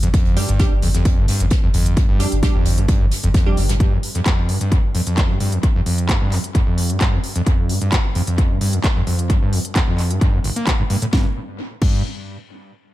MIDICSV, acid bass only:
0, 0, Header, 1, 2, 480
1, 0, Start_track
1, 0, Tempo, 458015
1, 145, Time_signature, 4, 2, 24, 8
1, 13560, End_track
2, 0, Start_track
2, 0, Title_t, "Acid bass"
2, 0, Program_c, 0, 38
2, 29, Note_on_c, 0, 41, 100
2, 92, Note_off_c, 0, 41, 0
2, 143, Note_on_c, 0, 41, 83
2, 383, Note_on_c, 0, 43, 77
2, 399, Note_off_c, 0, 41, 0
2, 488, Note_off_c, 0, 43, 0
2, 509, Note_on_c, 0, 43, 78
2, 624, Note_on_c, 0, 41, 104
2, 640, Note_off_c, 0, 43, 0
2, 693, Note_off_c, 0, 41, 0
2, 864, Note_on_c, 0, 41, 99
2, 934, Note_off_c, 0, 41, 0
2, 991, Note_on_c, 0, 41, 77
2, 1230, Note_on_c, 0, 43, 79
2, 1246, Note_off_c, 0, 41, 0
2, 1324, Note_off_c, 0, 43, 0
2, 1344, Note_on_c, 0, 43, 79
2, 1469, Note_on_c, 0, 41, 106
2, 1485, Note_off_c, 0, 43, 0
2, 1532, Note_off_c, 0, 41, 0
2, 1711, Note_on_c, 0, 41, 101
2, 1773, Note_off_c, 0, 41, 0
2, 1823, Note_on_c, 0, 41, 79
2, 2063, Note_on_c, 0, 43, 85
2, 2078, Note_off_c, 0, 41, 0
2, 2167, Note_off_c, 0, 43, 0
2, 2188, Note_on_c, 0, 43, 78
2, 2303, Note_on_c, 0, 41, 103
2, 2318, Note_off_c, 0, 43, 0
2, 2373, Note_off_c, 0, 41, 0
2, 2543, Note_on_c, 0, 41, 101
2, 2613, Note_off_c, 0, 41, 0
2, 2669, Note_on_c, 0, 41, 80
2, 2908, Note_on_c, 0, 43, 77
2, 2924, Note_off_c, 0, 41, 0
2, 3003, Note_off_c, 0, 43, 0
2, 3023, Note_on_c, 0, 43, 83
2, 3148, Note_on_c, 0, 41, 104
2, 3163, Note_off_c, 0, 43, 0
2, 3212, Note_off_c, 0, 41, 0
2, 3389, Note_on_c, 0, 41, 105
2, 3452, Note_off_c, 0, 41, 0
2, 3503, Note_on_c, 0, 41, 82
2, 3744, Note_on_c, 0, 43, 80
2, 3759, Note_off_c, 0, 41, 0
2, 3848, Note_off_c, 0, 43, 0
2, 3870, Note_on_c, 0, 43, 77
2, 3933, Note_off_c, 0, 43, 0
2, 3984, Note_on_c, 0, 43, 85
2, 4110, Note_on_c, 0, 41, 103
2, 4126, Note_off_c, 0, 43, 0
2, 4173, Note_off_c, 0, 41, 0
2, 4350, Note_on_c, 0, 41, 103
2, 4413, Note_off_c, 0, 41, 0
2, 4464, Note_on_c, 0, 41, 84
2, 4703, Note_on_c, 0, 43, 77
2, 4719, Note_off_c, 0, 41, 0
2, 4808, Note_off_c, 0, 43, 0
2, 4829, Note_on_c, 0, 43, 74
2, 4944, Note_on_c, 0, 41, 101
2, 4960, Note_off_c, 0, 43, 0
2, 5013, Note_off_c, 0, 41, 0
2, 5184, Note_on_c, 0, 41, 99
2, 5253, Note_off_c, 0, 41, 0
2, 5309, Note_on_c, 0, 41, 79
2, 5549, Note_on_c, 0, 43, 77
2, 5565, Note_off_c, 0, 41, 0
2, 5644, Note_off_c, 0, 43, 0
2, 5664, Note_on_c, 0, 43, 76
2, 5789, Note_on_c, 0, 41, 99
2, 5805, Note_off_c, 0, 43, 0
2, 5852, Note_off_c, 0, 41, 0
2, 6030, Note_on_c, 0, 41, 101
2, 6093, Note_off_c, 0, 41, 0
2, 6144, Note_on_c, 0, 41, 80
2, 6383, Note_on_c, 0, 43, 85
2, 6398, Note_off_c, 0, 41, 0
2, 6487, Note_off_c, 0, 43, 0
2, 6508, Note_on_c, 0, 43, 77
2, 6623, Note_on_c, 0, 41, 103
2, 6639, Note_off_c, 0, 43, 0
2, 6693, Note_off_c, 0, 41, 0
2, 6863, Note_on_c, 0, 41, 103
2, 6933, Note_off_c, 0, 41, 0
2, 6989, Note_on_c, 0, 41, 78
2, 7231, Note_on_c, 0, 43, 79
2, 7247, Note_off_c, 0, 41, 0
2, 7325, Note_off_c, 0, 43, 0
2, 7344, Note_on_c, 0, 43, 85
2, 7471, Note_on_c, 0, 41, 100
2, 7486, Note_off_c, 0, 43, 0
2, 7533, Note_off_c, 0, 41, 0
2, 7711, Note_on_c, 0, 41, 102
2, 7773, Note_off_c, 0, 41, 0
2, 7824, Note_on_c, 0, 41, 83
2, 8066, Note_on_c, 0, 43, 79
2, 8082, Note_off_c, 0, 41, 0
2, 8169, Note_off_c, 0, 43, 0
2, 8191, Note_on_c, 0, 43, 77
2, 8304, Note_on_c, 0, 41, 101
2, 8320, Note_off_c, 0, 43, 0
2, 8373, Note_off_c, 0, 41, 0
2, 8544, Note_on_c, 0, 41, 100
2, 8614, Note_off_c, 0, 41, 0
2, 8672, Note_on_c, 0, 41, 76
2, 8911, Note_on_c, 0, 43, 75
2, 8927, Note_off_c, 0, 41, 0
2, 9005, Note_off_c, 0, 43, 0
2, 9025, Note_on_c, 0, 43, 78
2, 9151, Note_on_c, 0, 41, 104
2, 9167, Note_off_c, 0, 43, 0
2, 9213, Note_off_c, 0, 41, 0
2, 9392, Note_on_c, 0, 41, 101
2, 9454, Note_off_c, 0, 41, 0
2, 9506, Note_on_c, 0, 41, 79
2, 9746, Note_on_c, 0, 43, 84
2, 9762, Note_off_c, 0, 41, 0
2, 9849, Note_off_c, 0, 43, 0
2, 9873, Note_on_c, 0, 43, 76
2, 9986, Note_on_c, 0, 41, 101
2, 10002, Note_off_c, 0, 43, 0
2, 10054, Note_off_c, 0, 41, 0
2, 10226, Note_on_c, 0, 41, 101
2, 10294, Note_off_c, 0, 41, 0
2, 10351, Note_on_c, 0, 41, 79
2, 10591, Note_on_c, 0, 43, 74
2, 10607, Note_off_c, 0, 41, 0
2, 10685, Note_off_c, 0, 43, 0
2, 10705, Note_on_c, 0, 43, 85
2, 10829, Note_on_c, 0, 41, 103
2, 10845, Note_off_c, 0, 43, 0
2, 10892, Note_off_c, 0, 41, 0
2, 10944, Note_on_c, 0, 31, 100
2, 11013, Note_off_c, 0, 31, 0
2, 11070, Note_on_c, 0, 58, 102
2, 11164, Note_off_c, 0, 58, 0
2, 11184, Note_on_c, 0, 43, 84
2, 11226, Note_off_c, 0, 43, 0
2, 11310, Note_on_c, 0, 43, 77
2, 11348, Note_off_c, 0, 43, 0
2, 11425, Note_on_c, 0, 43, 104
2, 11494, Note_off_c, 0, 43, 0
2, 11550, Note_on_c, 0, 45, 104
2, 11588, Note_off_c, 0, 45, 0
2, 11663, Note_on_c, 0, 43, 95
2, 11802, Note_off_c, 0, 43, 0
2, 12384, Note_on_c, 0, 43, 90
2, 12607, Note_off_c, 0, 43, 0
2, 13560, End_track
0, 0, End_of_file